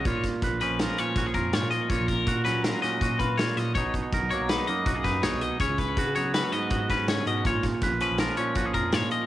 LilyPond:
<<
  \new Staff \with { instrumentName = "Clean electric guitar" } { \time 5/4 \key ais \phrygian \tempo 4 = 162 cis''8 r4 b'8 ais'8 cis''4 ais'8 cis''8 dis''8 | cis''8 ais'4 b'8 ais'8 dis''4 b'8 cis''8 dis''8 | cis''8 r4 cis''8 b'8 dis''4 b'8 cis''8 dis''8 | cis''8 b'4 cis''8 b'8 dis''4 b'8 cis''8 dis''8 |
cis''8 r4 b'8 ais'8 cis''4 ais'8 cis''8 dis''8 | }
  \new Staff \with { instrumentName = "Clean electric guitar" } { \time 5/4 \key ais \phrygian << { eis'4 b'8 cis'8 eis'8 cis'8 fis'16 gis'16 eis'8 eis'4 | eis'4 fis'8 cis'8 eis'8 cis'8 fis'8 eis'8 eis'4 | dis'4 ais'8 ais8 dis'8 ais8 fis'16 gis'16 dis'8 dis'4 | cis'4 fis'8 b8 cis'8 b8 fis'8 cis'4. |
eis'4 b'8 cis'8 eis'8 cis'8 fis'16 gis'16 eis'8 eis'4 | } \\ { ais,4. eis4 ais,4. ais,4 | ais,4. fis4 ais,4. ais,4 | b,4. fis4 fis,4. b,4 | cis4. fis4 gis,4. cis8 b,8 |
ais,4. eis4 ais,4. ais,4 | } >> }
  \new Staff \with { instrumentName = "Tine electric piano" } { \clef bass \time 5/4 \key ais \phrygian ais,,16 gis,8 r16 ais,,16 ais,,16 r16 ais,,8 r8. ais,,8 eis,8 gis,16 ais,8 r16 | ais,,16 ais,,8. ais,16 ais,8 ais,8 r8. ais,4. ais,8 | b,,16 ais,,8 r16 b,,16 b,,16 r16 b,,8 r8. b,,8 fis,8 ais,,16 bis,,8 r16 | cis,16 cis,8. cis16 cis8 cis8 r8. gis,4. gis,8 |
ais,,16 gis,8 r16 ais,,16 ais,,16 r16 ais,,8 r8. ais,,8 eis,8 gis,16 ais,8 r16 | }
  \new DrumStaff \with { instrumentName = "Drums" } \drummode { \time 5/4 <hh bd>8 <hh bd sn>8 <hh bd>8 hh8 <hh sn>8 hh8 <hh bd sn>8 <hh bd>8 <hh sn>8 hh8 | <hh bd>8 <hh bd>8 <hh bd>8 <hh sn>8 <hh sn>8 <hh sn>8 <hh bd>8 <hh bd>8 <hh sn>8 <hh sn>8 | <hh bd>8 <hh bd>8 <hh bd>8 hh8 <hh sn>8 hh8 <hh bd>8 <hh bd sn>8 <hh sn>8 hh8 | <hh bd>8 <hh bd>8 <hh bd>8 hh8 <hh sn>8 hh8 <hh bd>8 <hh bd sn>8 <hh sn>8 hh8 |
<hh bd>8 <hh bd sn>8 <hh bd sn>8 hh8 <hh sn>8 hh8 <hh bd>8 <hh bd>8 <hh sn>8 hh8 | }
>>